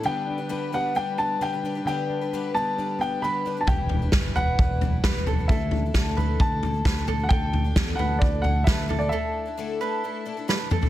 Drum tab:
SD |----------------|----------------|----o-------o---|----o-------o---|
T2 |----------------|----------------|----------------|----------------|
FT |----------------|----------------|o-o-o-o-o-o-o-o-|o-o-o-o-o-o-o-o-|
BD |----------------|----------------|o---o---o---o---|o---o---o---o---|

SD |----o-------o---|------------o---|
T2 |----------------|--------------o-|
FT |o-o-o-o-o-o-o-o-|---------------o|
BD |o---o---o---o---|----------------|